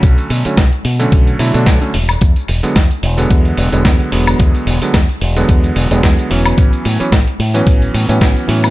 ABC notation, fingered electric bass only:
X:1
M:4/4
L:1/16
Q:"Swing 16ths" 1/4=110
K:Emix
V:1 name="Fingered electric bass" clef=bass
B,,, z B,, z B,,, z B,, z B,,, z B,, B,, B,,, z E,,, z | E,, z E,,, z E,, z E,,, z E,, z E,,, E,,, E,, z E,,, z | E,, z E,,, z E,, z E,,, z E,, z E,,, E,,, E,, z E,,, z | A,,, z A,, z A,,, z A,, z A,,, z A,, A,, A,,, z A,, z |]